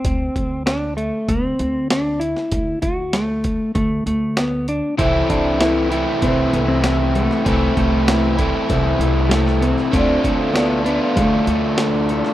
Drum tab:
HH |x-x-x-x-x-x-x-x-|x-x-x-x-x-x-x-x-|x-x-x-x-x-x-x-x-|x-x-x-x-x-x-x-x-|
SD |----o-------o--o|----o-------o---|----o-------o--o|----o-------oo-o|
BD |o-o-----o-------|o-o---o-o-------|o-o-----o-------|o-o---o-o-------|

HH |x-x-x-x-x-x-x-x-|
SD |----o-------o--o|
BD |o-o-----o-------|